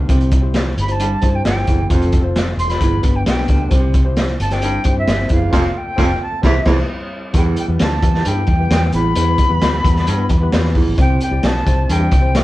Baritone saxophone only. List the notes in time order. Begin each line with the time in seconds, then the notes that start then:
0.09 C3
0.99 G2
1.67 E2
1.91 F2
2.81 E2
3.49 D2
3.72 C3
4.63 G2
5.30 E2
5.52 F2
5.98 F2
6.44 E2
6.66 E2
7.35 E2
8.26 G2
8.93 E2
9.16 E2
10.08 G2
10.75 E2
10.98 C3
11.89 G2